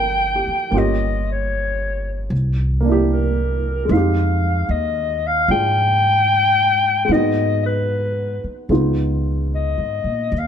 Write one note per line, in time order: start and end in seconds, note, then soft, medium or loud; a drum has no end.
0.00 0.43 G1 medium
0.00 0.69 A#3 soft
0.00 0.74 C4 soft
0.00 0.73 D4 soft
0.00 0.75 D#4 soft
0.00 0.73 F4 soft
0.00 0.56 A#4 soft
0.00 0.75 C5 soft
0.00 0.79 G5 loud
0.35 0.74 G4 soft
0.47 muted upright bass stroke soft
0.71 2.27 G1 medium
0.71 2.31 A#3 soft
0.71 2.32 C#4 soft
0.71 2.33 F4 soft
0.76 2.33 G4 soft
0.76 1.29 D#5 medium
1.32 2.30 C#5 medium
2.30 3.86 C2 medium
2.81 3.88 A#3 medium
2.81 3.90 D4 soft
2.89 3.92 E4 soft
2.89 3.94 G4 medium
3.11 3.94 A#4 medium
3.85 7.03 G#3 soft
3.85 7.08 C4 soft
3.89 4.65 F2 medium
3.89 7.10 D#4 soft
3.89 4.72 F5 medium
3.97 7.13 G4 soft
4.69 5.45 D#2 medium
4.69 5.28 D#5 medium
5.27 5.50 F5 medium
5.48 7.05 G#2 medium
5.48 7.09 D4 soft
5.48 7.10 F4 soft
5.48 7.10 G#4 soft
5.48 7.13 G5 loud
7.05 8.68 G#3 soft
7.05 8.69 B3 soft
7.09 8.39 G#2 medium
7.09 8.70 D#4 soft
7.09 7.65 D#5 medium
7.15 8.73 F#4 soft
7.66 8.67 B4 medium
8.44 muted upright bass stroke soft
8.69 9.74 C#2 medium
8.69 10.32 G#3 soft
8.69 10.32 B3 soft
8.69 10.33 D#4 soft
8.69 10.33 F4 soft
9.55 10.40 D#5 medium
9.78 10.03 G#2 soft
10.04 10.30 A#2 soft
10.32 10.47 D#2 medium
10.38 10.47 F5 medium